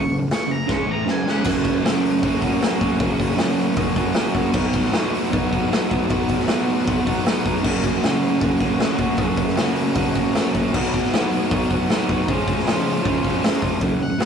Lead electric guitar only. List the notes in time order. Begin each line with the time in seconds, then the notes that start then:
Already playing: C#6
0.33 C#6
0.51 A#5
0.72 C#6
0.91 A#5
1.11 G#5
1.30 F#5
14.03 F#5